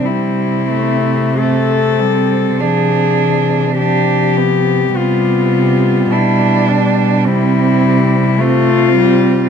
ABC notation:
X:1
M:4/4
L:1/8
Q:1/4=52
K:C
V:1 name="Cello"
E2 A2 ^G2 =G2 | F2 E D E2 F2 |]
V:2 name="Cello"
C2 C2 D2 D B, | B,2 D2 C2 C2 |]
V:3 name="Cello" clef=bass
G, A, A, G, F, E, F,2 | G,6 A, G, |]
V:4 name="Cello" clef=bass
C,4 C,4 | C,2 B,,2 C,4 |]